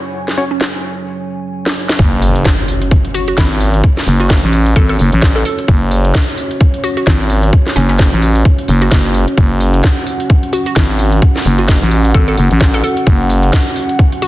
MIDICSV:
0, 0, Header, 1, 7, 480
1, 0, Start_track
1, 0, Key_signature, 3, "minor"
1, 0, Tempo, 461538
1, 150, Time_signature, 4, 2, 24, 8
1, 14848, End_track
2, 0, Start_track
2, 0, Title_t, "Analog synth pad"
2, 0, Program_c, 0, 89
2, 0, Note_on_c, 0, 54, 81
2, 0, Note_on_c, 0, 61, 77
2, 0, Note_on_c, 0, 73, 74
2, 0, Note_on_c, 0, 80, 92
2, 2029, Note_off_c, 0, 54, 0
2, 2029, Note_off_c, 0, 61, 0
2, 2029, Note_off_c, 0, 73, 0
2, 2056, Note_off_c, 0, 80, 0
2, 2070, Note_on_c, 0, 61, 87
2, 2070, Note_on_c, 0, 66, 82
2, 2070, Note_on_c, 0, 73, 98
2, 9736, Note_off_c, 0, 73, 0
2, 9752, Note_on_c, 0, 78, 99
2, 14848, Note_off_c, 0, 61, 0
2, 14848, Note_off_c, 0, 66, 0
2, 14848, Note_off_c, 0, 78, 0
2, 14848, End_track
3, 0, Start_track
3, 0, Title_t, "Synth pluck"
3, 0, Program_c, 1, 84
3, 391, Note_on_c, 1, 61, 85
3, 480, Note_off_c, 1, 61, 0
3, 530, Note_on_c, 1, 61, 74
3, 594, Note_off_c, 1, 61, 0
3, 3270, Note_on_c, 1, 66, 90
3, 3359, Note_off_c, 1, 66, 0
3, 3411, Note_on_c, 1, 66, 74
3, 3475, Note_off_c, 1, 66, 0
3, 3511, Note_on_c, 1, 64, 89
3, 3890, Note_off_c, 1, 64, 0
3, 4369, Note_on_c, 1, 66, 91
3, 4523, Note_off_c, 1, 66, 0
3, 4950, Note_on_c, 1, 69, 89
3, 5039, Note_off_c, 1, 69, 0
3, 5090, Note_on_c, 1, 69, 78
3, 5154, Note_off_c, 1, 69, 0
3, 5569, Note_on_c, 1, 69, 91
3, 5634, Note_off_c, 1, 69, 0
3, 5671, Note_on_c, 1, 69, 80
3, 5760, Note_off_c, 1, 69, 0
3, 7110, Note_on_c, 1, 66, 89
3, 7199, Note_off_c, 1, 66, 0
3, 7249, Note_on_c, 1, 66, 76
3, 7314, Note_off_c, 1, 66, 0
3, 7349, Note_on_c, 1, 64, 90
3, 7729, Note_off_c, 1, 64, 0
3, 8069, Note_on_c, 1, 61, 91
3, 8159, Note_off_c, 1, 61, 0
3, 8209, Note_on_c, 1, 61, 81
3, 8274, Note_off_c, 1, 61, 0
3, 9170, Note_on_c, 1, 66, 90
3, 9510, Note_off_c, 1, 66, 0
3, 10950, Note_on_c, 1, 66, 90
3, 11039, Note_off_c, 1, 66, 0
3, 11088, Note_on_c, 1, 66, 77
3, 11153, Note_off_c, 1, 66, 0
3, 11189, Note_on_c, 1, 64, 92
3, 11569, Note_off_c, 1, 64, 0
3, 12049, Note_on_c, 1, 66, 92
3, 12203, Note_off_c, 1, 66, 0
3, 12630, Note_on_c, 1, 69, 87
3, 12719, Note_off_c, 1, 69, 0
3, 12770, Note_on_c, 1, 69, 78
3, 12834, Note_off_c, 1, 69, 0
3, 13250, Note_on_c, 1, 69, 90
3, 13314, Note_off_c, 1, 69, 0
3, 13349, Note_on_c, 1, 69, 78
3, 13439, Note_off_c, 1, 69, 0
3, 14790, Note_on_c, 1, 66, 91
3, 14848, Note_off_c, 1, 66, 0
3, 14848, End_track
4, 0, Start_track
4, 0, Title_t, "Synth stab"
4, 0, Program_c, 2, 62
4, 390, Note_on_c, 2, 61, 93
4, 390, Note_on_c, 2, 66, 85
4, 390, Note_on_c, 2, 73, 100
4, 463, Note_off_c, 2, 61, 0
4, 463, Note_off_c, 2, 66, 0
4, 463, Note_off_c, 2, 73, 0
4, 14848, End_track
5, 0, Start_track
5, 0, Title_t, "FM bass"
5, 0, Program_c, 3, 39
5, 2071, Note_on_c, 3, 30, 97
5, 2534, Note_off_c, 3, 30, 0
5, 3510, Note_on_c, 3, 32, 93
5, 3974, Note_off_c, 3, 32, 0
5, 4230, Note_on_c, 3, 30, 97
5, 4587, Note_off_c, 3, 30, 0
5, 4609, Note_on_c, 3, 33, 102
5, 4934, Note_off_c, 3, 33, 0
5, 4950, Note_on_c, 3, 32, 98
5, 5174, Note_off_c, 3, 32, 0
5, 5190, Note_on_c, 3, 30, 97
5, 5307, Note_off_c, 3, 30, 0
5, 5329, Note_on_c, 3, 33, 96
5, 5654, Note_off_c, 3, 33, 0
5, 5910, Note_on_c, 3, 30, 98
5, 6374, Note_off_c, 3, 30, 0
5, 7351, Note_on_c, 3, 32, 95
5, 7814, Note_off_c, 3, 32, 0
5, 8070, Note_on_c, 3, 30, 97
5, 8427, Note_off_c, 3, 30, 0
5, 8449, Note_on_c, 3, 33, 100
5, 8774, Note_off_c, 3, 33, 0
5, 9030, Note_on_c, 3, 30, 98
5, 9254, Note_off_c, 3, 30, 0
5, 9270, Note_on_c, 3, 30, 95
5, 9627, Note_off_c, 3, 30, 0
5, 9750, Note_on_c, 3, 30, 98
5, 10214, Note_off_c, 3, 30, 0
5, 11191, Note_on_c, 3, 32, 93
5, 11654, Note_off_c, 3, 32, 0
5, 11910, Note_on_c, 3, 30, 96
5, 12267, Note_off_c, 3, 30, 0
5, 12289, Note_on_c, 3, 33, 103
5, 12614, Note_off_c, 3, 33, 0
5, 12630, Note_on_c, 3, 32, 100
5, 12854, Note_off_c, 3, 32, 0
5, 12869, Note_on_c, 3, 30, 97
5, 12987, Note_off_c, 3, 30, 0
5, 13009, Note_on_c, 3, 33, 96
5, 13334, Note_off_c, 3, 33, 0
5, 13590, Note_on_c, 3, 30, 98
5, 14054, Note_off_c, 3, 30, 0
5, 14848, End_track
6, 0, Start_track
6, 0, Title_t, "Impact"
6, 0, Program_c, 4, 103
6, 2070, Note_on_c, 4, 60, 75
6, 3990, Note_off_c, 4, 60, 0
6, 14848, End_track
7, 0, Start_track
7, 0, Title_t, "Drums"
7, 292, Note_on_c, 9, 38, 34
7, 396, Note_off_c, 9, 38, 0
7, 632, Note_on_c, 9, 38, 103
7, 736, Note_off_c, 9, 38, 0
7, 1730, Note_on_c, 9, 38, 68
7, 1834, Note_off_c, 9, 38, 0
7, 1970, Note_on_c, 9, 38, 90
7, 2071, Note_on_c, 9, 36, 122
7, 2071, Note_on_c, 9, 42, 68
7, 2074, Note_off_c, 9, 38, 0
7, 2175, Note_off_c, 9, 36, 0
7, 2175, Note_off_c, 9, 42, 0
7, 2310, Note_on_c, 9, 46, 107
7, 2414, Note_off_c, 9, 46, 0
7, 2450, Note_on_c, 9, 42, 56
7, 2551, Note_off_c, 9, 42, 0
7, 2551, Note_on_c, 9, 36, 112
7, 2551, Note_on_c, 9, 42, 66
7, 2553, Note_on_c, 9, 38, 119
7, 2655, Note_off_c, 9, 36, 0
7, 2655, Note_off_c, 9, 42, 0
7, 2657, Note_off_c, 9, 38, 0
7, 2790, Note_on_c, 9, 46, 108
7, 2894, Note_off_c, 9, 46, 0
7, 2930, Note_on_c, 9, 42, 55
7, 3030, Note_off_c, 9, 42, 0
7, 3030, Note_on_c, 9, 36, 119
7, 3030, Note_on_c, 9, 42, 71
7, 3134, Note_off_c, 9, 36, 0
7, 3134, Note_off_c, 9, 42, 0
7, 3169, Note_on_c, 9, 42, 62
7, 3270, Note_on_c, 9, 46, 105
7, 3273, Note_off_c, 9, 42, 0
7, 3374, Note_off_c, 9, 46, 0
7, 3409, Note_on_c, 9, 42, 57
7, 3509, Note_off_c, 9, 42, 0
7, 3509, Note_on_c, 9, 42, 70
7, 3510, Note_on_c, 9, 36, 121
7, 3512, Note_on_c, 9, 38, 125
7, 3613, Note_off_c, 9, 42, 0
7, 3614, Note_off_c, 9, 36, 0
7, 3616, Note_off_c, 9, 38, 0
7, 3750, Note_on_c, 9, 46, 102
7, 3854, Note_off_c, 9, 46, 0
7, 3889, Note_on_c, 9, 42, 57
7, 3990, Note_off_c, 9, 42, 0
7, 3990, Note_on_c, 9, 36, 124
7, 3990, Note_on_c, 9, 42, 65
7, 4094, Note_off_c, 9, 36, 0
7, 4094, Note_off_c, 9, 42, 0
7, 4131, Note_on_c, 9, 38, 39
7, 4229, Note_on_c, 9, 46, 114
7, 4235, Note_off_c, 9, 38, 0
7, 4333, Note_off_c, 9, 46, 0
7, 4369, Note_on_c, 9, 42, 52
7, 4469, Note_off_c, 9, 42, 0
7, 4469, Note_on_c, 9, 42, 65
7, 4470, Note_on_c, 9, 36, 121
7, 4472, Note_on_c, 9, 38, 119
7, 4573, Note_off_c, 9, 42, 0
7, 4574, Note_off_c, 9, 36, 0
7, 4576, Note_off_c, 9, 38, 0
7, 4609, Note_on_c, 9, 42, 35
7, 4709, Note_on_c, 9, 46, 108
7, 4713, Note_off_c, 9, 42, 0
7, 4813, Note_off_c, 9, 46, 0
7, 4849, Note_on_c, 9, 42, 53
7, 4949, Note_off_c, 9, 42, 0
7, 4949, Note_on_c, 9, 42, 68
7, 4950, Note_on_c, 9, 36, 121
7, 5053, Note_off_c, 9, 42, 0
7, 5054, Note_off_c, 9, 36, 0
7, 5089, Note_on_c, 9, 42, 62
7, 5190, Note_on_c, 9, 46, 108
7, 5193, Note_off_c, 9, 42, 0
7, 5294, Note_off_c, 9, 46, 0
7, 5329, Note_on_c, 9, 42, 54
7, 5430, Note_off_c, 9, 42, 0
7, 5430, Note_on_c, 9, 36, 123
7, 5430, Note_on_c, 9, 42, 67
7, 5432, Note_on_c, 9, 38, 123
7, 5534, Note_off_c, 9, 36, 0
7, 5534, Note_off_c, 9, 42, 0
7, 5536, Note_off_c, 9, 38, 0
7, 5670, Note_on_c, 9, 46, 105
7, 5774, Note_off_c, 9, 46, 0
7, 5810, Note_on_c, 9, 42, 53
7, 5910, Note_off_c, 9, 42, 0
7, 5910, Note_on_c, 9, 36, 123
7, 5910, Note_on_c, 9, 42, 62
7, 6014, Note_off_c, 9, 36, 0
7, 6014, Note_off_c, 9, 42, 0
7, 6150, Note_on_c, 9, 46, 113
7, 6254, Note_off_c, 9, 46, 0
7, 6289, Note_on_c, 9, 42, 51
7, 6390, Note_off_c, 9, 42, 0
7, 6390, Note_on_c, 9, 42, 64
7, 6391, Note_on_c, 9, 36, 122
7, 6392, Note_on_c, 9, 38, 119
7, 6494, Note_off_c, 9, 42, 0
7, 6495, Note_off_c, 9, 36, 0
7, 6496, Note_off_c, 9, 38, 0
7, 6630, Note_on_c, 9, 46, 113
7, 6734, Note_off_c, 9, 46, 0
7, 6769, Note_on_c, 9, 42, 51
7, 6870, Note_off_c, 9, 42, 0
7, 6870, Note_on_c, 9, 42, 67
7, 6871, Note_on_c, 9, 36, 126
7, 6974, Note_off_c, 9, 42, 0
7, 6975, Note_off_c, 9, 36, 0
7, 7009, Note_on_c, 9, 42, 60
7, 7110, Note_on_c, 9, 46, 107
7, 7113, Note_off_c, 9, 42, 0
7, 7214, Note_off_c, 9, 46, 0
7, 7249, Note_on_c, 9, 42, 51
7, 7350, Note_off_c, 9, 42, 0
7, 7350, Note_on_c, 9, 42, 65
7, 7351, Note_on_c, 9, 36, 127
7, 7353, Note_on_c, 9, 38, 120
7, 7454, Note_off_c, 9, 42, 0
7, 7455, Note_off_c, 9, 36, 0
7, 7457, Note_off_c, 9, 38, 0
7, 7590, Note_on_c, 9, 46, 107
7, 7694, Note_off_c, 9, 46, 0
7, 7730, Note_on_c, 9, 42, 51
7, 7830, Note_off_c, 9, 42, 0
7, 7830, Note_on_c, 9, 36, 123
7, 7830, Note_on_c, 9, 42, 62
7, 7934, Note_off_c, 9, 36, 0
7, 7934, Note_off_c, 9, 42, 0
7, 7972, Note_on_c, 9, 38, 37
7, 8070, Note_on_c, 9, 46, 113
7, 8076, Note_off_c, 9, 38, 0
7, 8174, Note_off_c, 9, 46, 0
7, 8209, Note_on_c, 9, 42, 51
7, 8310, Note_off_c, 9, 42, 0
7, 8310, Note_on_c, 9, 36, 124
7, 8310, Note_on_c, 9, 42, 61
7, 8313, Note_on_c, 9, 38, 114
7, 8414, Note_off_c, 9, 36, 0
7, 8414, Note_off_c, 9, 42, 0
7, 8417, Note_off_c, 9, 38, 0
7, 8449, Note_on_c, 9, 42, 34
7, 8550, Note_on_c, 9, 46, 110
7, 8553, Note_off_c, 9, 42, 0
7, 8654, Note_off_c, 9, 46, 0
7, 8689, Note_on_c, 9, 42, 50
7, 8790, Note_off_c, 9, 42, 0
7, 8790, Note_on_c, 9, 42, 65
7, 8791, Note_on_c, 9, 36, 125
7, 8894, Note_off_c, 9, 42, 0
7, 8895, Note_off_c, 9, 36, 0
7, 8929, Note_on_c, 9, 42, 60
7, 9030, Note_on_c, 9, 46, 105
7, 9033, Note_off_c, 9, 42, 0
7, 9134, Note_off_c, 9, 46, 0
7, 9169, Note_on_c, 9, 42, 51
7, 9270, Note_off_c, 9, 42, 0
7, 9270, Note_on_c, 9, 36, 125
7, 9270, Note_on_c, 9, 42, 63
7, 9273, Note_on_c, 9, 38, 118
7, 9374, Note_off_c, 9, 36, 0
7, 9374, Note_off_c, 9, 42, 0
7, 9377, Note_off_c, 9, 38, 0
7, 9510, Note_on_c, 9, 46, 109
7, 9614, Note_off_c, 9, 46, 0
7, 9649, Note_on_c, 9, 42, 51
7, 9750, Note_off_c, 9, 42, 0
7, 9750, Note_on_c, 9, 42, 63
7, 9751, Note_on_c, 9, 36, 122
7, 9854, Note_off_c, 9, 42, 0
7, 9855, Note_off_c, 9, 36, 0
7, 9989, Note_on_c, 9, 46, 106
7, 10093, Note_off_c, 9, 46, 0
7, 10129, Note_on_c, 9, 42, 51
7, 10230, Note_off_c, 9, 42, 0
7, 10230, Note_on_c, 9, 42, 62
7, 10231, Note_on_c, 9, 36, 115
7, 10232, Note_on_c, 9, 38, 110
7, 10334, Note_off_c, 9, 42, 0
7, 10335, Note_off_c, 9, 36, 0
7, 10336, Note_off_c, 9, 38, 0
7, 10469, Note_on_c, 9, 46, 105
7, 10573, Note_off_c, 9, 46, 0
7, 10609, Note_on_c, 9, 42, 52
7, 10709, Note_off_c, 9, 42, 0
7, 10709, Note_on_c, 9, 42, 64
7, 10711, Note_on_c, 9, 36, 122
7, 10813, Note_off_c, 9, 42, 0
7, 10815, Note_off_c, 9, 36, 0
7, 10849, Note_on_c, 9, 42, 60
7, 10949, Note_on_c, 9, 46, 106
7, 10953, Note_off_c, 9, 42, 0
7, 11053, Note_off_c, 9, 46, 0
7, 11089, Note_on_c, 9, 42, 52
7, 11189, Note_off_c, 9, 42, 0
7, 11189, Note_on_c, 9, 42, 65
7, 11191, Note_on_c, 9, 36, 123
7, 11192, Note_on_c, 9, 38, 112
7, 11293, Note_off_c, 9, 42, 0
7, 11295, Note_off_c, 9, 36, 0
7, 11296, Note_off_c, 9, 38, 0
7, 11429, Note_on_c, 9, 46, 104
7, 11533, Note_off_c, 9, 46, 0
7, 11569, Note_on_c, 9, 42, 50
7, 11669, Note_off_c, 9, 42, 0
7, 11669, Note_on_c, 9, 42, 65
7, 11670, Note_on_c, 9, 36, 115
7, 11773, Note_off_c, 9, 42, 0
7, 11774, Note_off_c, 9, 36, 0
7, 11811, Note_on_c, 9, 38, 34
7, 11909, Note_on_c, 9, 46, 104
7, 11915, Note_off_c, 9, 38, 0
7, 12013, Note_off_c, 9, 46, 0
7, 12048, Note_on_c, 9, 42, 52
7, 12150, Note_off_c, 9, 42, 0
7, 12150, Note_on_c, 9, 36, 109
7, 12150, Note_on_c, 9, 42, 64
7, 12152, Note_on_c, 9, 38, 110
7, 12254, Note_off_c, 9, 36, 0
7, 12254, Note_off_c, 9, 42, 0
7, 12256, Note_off_c, 9, 38, 0
7, 12289, Note_on_c, 9, 42, 35
7, 12390, Note_on_c, 9, 46, 102
7, 12393, Note_off_c, 9, 42, 0
7, 12494, Note_off_c, 9, 46, 0
7, 12529, Note_on_c, 9, 42, 51
7, 12630, Note_off_c, 9, 42, 0
7, 12630, Note_on_c, 9, 36, 119
7, 12630, Note_on_c, 9, 42, 66
7, 12734, Note_off_c, 9, 36, 0
7, 12734, Note_off_c, 9, 42, 0
7, 12769, Note_on_c, 9, 42, 61
7, 12870, Note_on_c, 9, 46, 100
7, 12873, Note_off_c, 9, 42, 0
7, 12974, Note_off_c, 9, 46, 0
7, 13009, Note_on_c, 9, 42, 55
7, 13110, Note_off_c, 9, 42, 0
7, 13110, Note_on_c, 9, 36, 117
7, 13110, Note_on_c, 9, 42, 65
7, 13112, Note_on_c, 9, 38, 112
7, 13214, Note_off_c, 9, 36, 0
7, 13214, Note_off_c, 9, 42, 0
7, 13216, Note_off_c, 9, 38, 0
7, 13350, Note_on_c, 9, 46, 102
7, 13454, Note_off_c, 9, 46, 0
7, 13489, Note_on_c, 9, 42, 53
7, 13590, Note_off_c, 9, 42, 0
7, 13590, Note_on_c, 9, 36, 116
7, 13590, Note_on_c, 9, 42, 69
7, 13694, Note_off_c, 9, 36, 0
7, 13694, Note_off_c, 9, 42, 0
7, 13830, Note_on_c, 9, 46, 106
7, 13934, Note_off_c, 9, 46, 0
7, 13969, Note_on_c, 9, 42, 56
7, 14070, Note_off_c, 9, 42, 0
7, 14070, Note_on_c, 9, 36, 110
7, 14070, Note_on_c, 9, 42, 65
7, 14072, Note_on_c, 9, 38, 111
7, 14174, Note_off_c, 9, 36, 0
7, 14174, Note_off_c, 9, 42, 0
7, 14176, Note_off_c, 9, 38, 0
7, 14310, Note_on_c, 9, 46, 101
7, 14414, Note_off_c, 9, 46, 0
7, 14449, Note_on_c, 9, 42, 56
7, 14550, Note_off_c, 9, 42, 0
7, 14550, Note_on_c, 9, 42, 69
7, 14551, Note_on_c, 9, 36, 113
7, 14654, Note_off_c, 9, 42, 0
7, 14655, Note_off_c, 9, 36, 0
7, 14689, Note_on_c, 9, 42, 64
7, 14790, Note_on_c, 9, 46, 99
7, 14793, Note_off_c, 9, 42, 0
7, 14848, Note_off_c, 9, 46, 0
7, 14848, End_track
0, 0, End_of_file